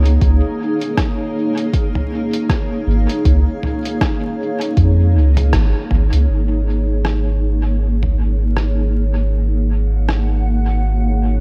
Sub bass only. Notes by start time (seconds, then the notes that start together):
Already playing: C#2
0.22 C#2
2.87 G#1
3.25 C#2
4.77 F2
5.15 C#2
5.53 G#1
5.91 G#1
6.13 C#2
6.29 G#1